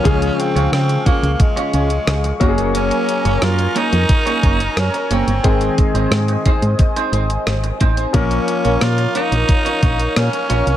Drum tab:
HH |xxxxxxxxxxxxxxxx|xxxxxxxxxxxxxxxx|xxxxxxxxxxxxxxxx|xxxxxxxxxxxxxxxx|
SD |----r-------r---|----r-------r---|----r-------r---|----r-------r---|
BD |o-----o-o-----o-|--------o-o-----|o-o---o-o-----o-|o-------o-o-----|